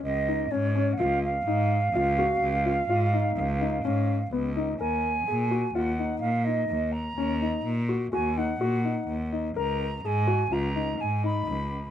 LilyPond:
<<
  \new Staff \with { instrumentName = "Flute" } { \time 5/4 \key ees \minor \tempo 4 = 126 ees''4 des''8.~ des''32 ges''32 f''8 f''2~ f''8~ | f''1 r4 | aes''2 ges''4 f''8 ees''4 bes''8~ | bes''4. r8 aes''8 ges''2 r8 |
bes''4 aes''4 bes''4 aes''8 ces'''4. | }
  \new Staff \with { instrumentName = "Grand piano" } { \time 5/4 \key ees \minor r8 ees'8 des'8 des'8 f'4 ees'4 f'8 ges'8~ | ges'8 f'8 f'8 ees'4 ees'8 des'4 ces'8 ees'8 | bes'4 aes'8 ges'8 f'8 ees'4 ees'4 r8 | des'8 ees'4 ges'8 ges'8 ees'8 ges'8 ees'4 ees'8 |
bes'4 aes'8 ges'8 f'8 ees'4 ees'4 r8 | }
  \new Staff \with { instrumentName = "Cello" } { \clef bass \time 5/4 \key ees \minor des,4 aes,4 des,4 aes,4 des,4 | des,4 aes,4 des,4 aes,4 des,4 | ees,4 bes,4 ees,4 bes,4 ees,4 | ees,4 bes,4 ees,4 bes,4 ees,4 |
des,4 aes,4 des,4 aes,4 des,4 | }
>>